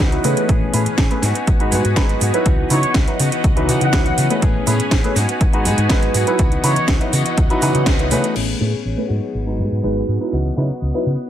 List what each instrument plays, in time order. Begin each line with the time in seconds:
Already playing: string machine E3 B4 D#5 F#5
0.00 fingered electric bass C#2, clean electric guitar E3 B3 D#4 F#4
0.12 grand piano F#3 D#4 E4 B4, closed hi-hat, tambourine
0.24 fingered electric bass C#3, clean electric guitar E3 B3 D#4 F#4, grand piano A3 C#4 G#4 B4, open hi-hat, tambourine
0.37 closed hi-hat, tambourine
0.48 fingered electric bass A1, clean electric guitar E3 B3 C#4 G#4, string machine C#4 G#5, kick, closed hi-hat, tambourine
0.73 fingered electric bass A2, clean electric guitar E3 B3 C#4 G#4, grand piano A3 C#4 G#4 B4, open hi-hat, tambourine
0.86 muted fingered electric bass stroke, closed hi-hat, tambourine
0.98 fingered electric bass A1, clean electric guitar E3 B3 C#4 G#4, kick, snare, closed hi-hat
1.11 grand piano A3 C#4 G#4 B4, closed hi-hat
1.22 fingered electric bass G#2, clean electric guitar F#3 B3 D#4 F#4, string machine F#4, snare, open hi-hat, tambourine
1.35 clean electric guitar B3 D#4 F#4, closed hi-hat, tambourine
1.47 fingered electric bass G#1, kick, closed hi-hat, tambourine
1.59 grand piano G#3 D#4 F#4 B4, clean electric guitar B3 D#4 F#4, closed hi-hat
1.71 fingered electric bass G#2, clean electric guitar F#3 B3 D#4 F#4, open hi-hat, tambourine
1.84 fingered electric bass G#2, clean electric guitar B3 D#4 F#4, closed hi-hat, tambourine
1.96 fingered electric bass G#1, clean electric guitar F#3 B3 F#4, grand piano G#3 D#4 F#4 B4, kick, snare, closed hi-hat
2.09 closed hi-hat, tambourine
2.20 fingered electric bass G#2, clean electric guitar F#3 B3 D#4 F#4, open hi-hat, tambourine
2.33 grand piano F#3 D#4 E4 B4, clean electric guitar B3 D#4 F#4, closed hi-hat, tambourine
2.45 fingered electric bass C#2, clean electric guitar E3 B3 D#4 F#4, string machine E3 D#5 F#5, kick, closed hi-hat, tambourine
2.70 fingered electric bass C#3, clean electric guitar E3 B3 D#4 F#4, grand piano F#3 D#4 E4 B4, trumpet section C#5, open hi-hat, tambourine
2.83 muted fingered electric bass stroke, closed hi-hat, tambourine
2.94 fingered electric bass C#2, clean electric guitar E3 B3 D#4 F#4, kick, snare, closed hi-hat
3.07 grand piano F#3 D#4 E4 B4, closed hi-hat
3.19 fingered electric bass C#3, clean electric guitar E3 B3 D#4 F#4, open hi-hat, tambourine
3.31 clean electric guitar B3 D#4 F#4, closed hi-hat, tambourine
3.44 fingered electric bass C#2, kick, closed hi-hat, tambourine
3.56 grand piano E3 F#3 D#4 B4, clean electric guitar B3 D#4 F#4, closed hi-hat
3.68 fingered electric bass C#3, clean electric guitar E3 B3 D#4 F#4, open hi-hat, tambourine
3.80 fingered electric bass C#3, clean electric guitar B3 D#4 F#4, trumpet section F#5, closed hi-hat, tambourine
3.92 fingered electric bass C#2, clean electric guitar E3 B3, grand piano E3 F#3 D#4 B4, kick, snare, closed hi-hat, tambourine
4.06 closed hi-hat, tambourine
4.17 fingered electric bass C#3, clean electric guitar E3 B3 D#4 F#4, open hi-hat, tambourine
4.30 grand piano A3 C#4 G#4 B4, closed hi-hat, tambourine
4.42 fingered electric bass A1, clean electric guitar E3 B3 C#4 G#4, string machine C#4 G#5, kick, closed hi-hat, tambourine
4.66 fingered electric bass A2, clean electric guitar E3 B3 C#4 G#4, grand piano A3 C#4 G#4 B4, open hi-hat, tambourine
4.80 muted fingered electric bass stroke, closed hi-hat, tambourine
4.91 fingered electric bass A1, clean electric guitar E3 B3 C#4 G#4, kick, snare, closed hi-hat, tambourine
5.04 grand piano A3 C#4 G#4 B4, closed hi-hat
5.15 fingered electric bass G#2, clean electric guitar F#3 B3 D#4 F#4, string machine F#4 G#5, snare, open hi-hat, tambourine
5.28 clean electric guitar B3 D#4 F#4, closed hi-hat, tambourine
5.41 fingered electric bass G#1, kick, closed hi-hat, tambourine
5.52 grand piano G#3 D#4 F#4 B4, clean electric guitar B3 D#4 F#4, closed hi-hat
5.64 fingered electric bass G#2, clean electric guitar F#3 B3 D#4 F#4, open hi-hat, tambourine
5.77 fingered electric bass G#2, clean electric guitar B3 D#4 F#4, closed hi-hat, tambourine
5.89 fingered electric bass G#1, clean electric guitar F#3, grand piano G#3 D#4 F#4 B4, kick, snare, closed hi-hat, tambourine
6.03 closed hi-hat, tambourine
6.14 fingered electric bass G#2, clean electric guitar F#3 B3 D#4 F#4, open hi-hat, tambourine
6.27 grand piano F#3 D#4 E4 B4, closed hi-hat, tambourine
6.39 fingered electric bass C#2, clean electric guitar E3 B3 D#4 F#4, string machine E3 D#5 F#5, kick, closed hi-hat, tambourine
6.52 closed hi-hat
6.63 fingered electric bass C#3, clean electric guitar E3 B3 D#4 F#4, grand piano F#3 D#4 E4 B4, trumpet section C#5, open hi-hat, tambourine
6.76 muted fingered electric bass stroke, closed hi-hat, tambourine
6.88 fingered electric bass C#2, clean electric guitar D#4 F#4, kick, snare, closed hi-hat
7.01 grand piano F#3 D#4 E4 B4, closed hi-hat
7.12 fingered electric bass C#3, clean electric guitar E3 B3 D#4 F#4, open hi-hat, tambourine
7.25 clean electric guitar B3 D#4 F#4, closed hi-hat
7.37 fingered electric bass C#2, kick, closed hi-hat, tambourine
7.49 grand piano F#3 D#4 E4 B4, clean electric guitar B3 D#4 F#4, closed hi-hat, tambourine
7.61 fingered electric bass C#3, clean electric guitar E3 B3 D#4 F#4, grand piano E3 F#3 D#4 B4, open hi-hat, tambourine
7.74 fingered electric bass C#3, clean electric guitar B3 D#4 F#4, closed hi-hat, tambourine
7.86 fingered electric bass C#2, clean electric guitar E3 B3 D#4 F#4, kick, snare, closed hi-hat, tambourine
7.99 grand piano F#3 D#4 E4 B4, closed hi-hat, tambourine
8.10 fingered electric bass C#3, clean electric guitar E3 B3 D#4 F#4, grand piano A3 C#4 G#4 B4, open hi-hat, tambourine
8.24 closed hi-hat, tambourine
8.35 fingered electric bass A1, clean electric guitar E3 B3 C#4 G#4, string machine G#4 C#5 B5, crash
8.60 fingered electric bass A2, grand piano A3 C#4 G#4 B4, clean electric guitar B3 C#4 G#4
8.73 muted fingered electric bass stroke
8.85 fingered electric bass A1
8.97 grand piano A3 C#4 G#4 B4
9.08 fingered electric bass G#2, clean electric guitar B3 D#4 F#4, string machine F#5
9.13 clean electric guitar F#3
9.35 fingered electric bass G#1
9.47 grand piano G#3 D#4 F#4 B4
9.59 fingered electric bass G#2
9.72 fingered electric bass G#2
9.83 fingered electric bass G#1, grand piano G#3 D#4 F#4 B4
10.08 fingered electric bass G#2
10.20 grand piano F#3 D#4 E4 B4
10.32 fingered electric bass C#2, clean electric guitar E3 B3 D#4 F#4, string machine B4 D#6
10.56 fingered electric bass C#3, grand piano F#3 D#4 E4 B4, clean electric guitar B3 D#4 F#4
10.70 muted fingered electric bass stroke
10.82 fingered electric bass C#2
10.94 grand piano F#3 D#4 E4 B4
11.06 fingered electric bass C#3